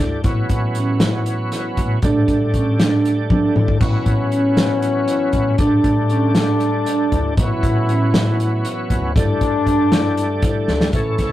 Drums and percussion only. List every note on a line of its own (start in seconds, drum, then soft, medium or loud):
0.24 kick loud
0.24 closed hi-hat medium
0.49 kick medium
0.49 closed hi-hat medium
0.75 closed hi-hat medium
1.00 snare loud
1.00 closed hi-hat medium
1.26 closed hi-hat medium
1.52 snare soft
1.52 closed hi-hat medium
1.77 kick medium
1.77 closed hi-hat medium
2.02 kick medium
2.02 closed hi-hat medium
2.28 kick medium
2.28 closed hi-hat medium
2.54 kick medium
2.54 closed hi-hat medium
2.80 snare loud
2.80 closed hi-hat medium
3.05 closed hi-hat medium
3.30 kick loud
3.30 high tom medium
3.56 mid tom medium
3.68 kick medium
3.81 kick loud
3.81 closed hi-hat medium
3.81 splash medium
4.06 kick medium
4.06 closed hi-hat medium
4.32 closed hi-hat medium
4.57 snare loud
4.57 closed hi-hat medium
4.82 closed hi-hat medium
5.08 closed hi-hat medium
5.33 kick medium
5.33 closed hi-hat medium
5.58 kick loud
5.58 closed hi-hat medium
5.84 kick medium
5.84 closed hi-hat medium
6.10 closed hi-hat medium
6.35 snare loud
6.35 closed hi-hat medium
6.60 closed hi-hat medium
6.86 closed hi-hat medium
7.12 kick medium
7.12 closed hi-hat medium
7.37 kick loud
7.37 closed hi-hat medium
7.63 kick medium
7.63 closed hi-hat medium
7.89 closed hi-hat medium
8.14 snare loud
8.14 closed hi-hat medium
8.40 closed hi-hat medium
8.65 closed hi-hat medium
8.90 kick medium
8.90 closed hi-hat medium
9.16 kick loud
9.16 closed hi-hat medium
9.41 kick medium
9.41 closed hi-hat medium
9.67 kick medium
9.67 closed hi-hat medium
9.92 snare loud
9.92 closed hi-hat medium
10.17 closed hi-hat medium
10.42 kick loud
10.42 closed hi-hat medium
10.68 snare medium
10.81 snare medium
10.93 kick loud
10.93 closed hi-hat medium
11.18 kick medium
11.18 snare soft
11.18 closed hi-hat medium